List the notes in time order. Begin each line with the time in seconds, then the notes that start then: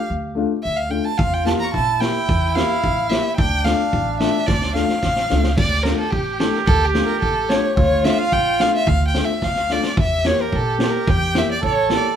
Already playing: G4
0.10 D2
0.35 A3 D4 F4
0.63 D2 E5
0.77 F5
0.89 A3 D4 F4 G5
1.05 A5
1.18 E2 F4 F5, kick
1.34 G5
1.45 A#3 E4 G4 A5, snare
1.60 A#5 C#6
1.66 A#5
1.73 A#2 E4 A5, kick, snare
2.00 A#3 E4 G4 G5, snare
2.29 E2, kick
2.55 A#3 E4 G4 F5, snare
2.84 A1, kick
3.09 A#3 E4 G4 E5, snare
3.36 D2 D4 G5, kick
3.64 A3 D4 F4 F5, snare
3.93 A1, kick
4.20 A3 D4 F4 E5, snare
4.46 D2 D5, kick, snare
4.62 snare
4.74 A3 D4 F4 F5, snare
4.89 snare
5.02 A1, kick, snare
5.16 snare
5.30 C#2 A3 D4 F4, snare
5.43 snare
5.58 D2 G4 D5, kick, crash
5.83 A3 D4 F4 A#4, snare
5.98 A4
6.10 A1 G4, kick
6.39 A3 D4 E4 A4, snare
6.54 A#4, snare
6.63 D2 A4 A#4
6.67 kick
6.85 G4
6.94 A3 D4 F4, snare
7.05 A#4
7.21 A1 A4, kick
7.49 A3 D4 F4 C#5, snare
7.75 D2 F4 C#5, kick
8.03 A3 D4 F4 E5, snare
8.18 F5
8.32 A1 G5, kick
8.60 A3 D4 F4 F5, snare
8.75 E5
8.87 D2 F5, kick
9.07 G5
9.14 A3 D4 F4, snare
9.25 E5
9.42 D2 F5, kick, snare
9.56 snare
9.70 A3 D4 F4 D5, snare
9.83 snare
9.97 E2 G4 E5, kick
10.25 A#3 E4 G4 C#5, snare
10.41 A#4
10.52 A#2 A4, kick
10.78 A#3 E4 G4 A#4, snare
11.07 E2 G5, kick
11.34 A#3 E4 G4 E5, snare
11.52 D5
11.61 A1 A4, kick
11.65 C#5
11.89 A#3 E4 G4, snare
11.94 D5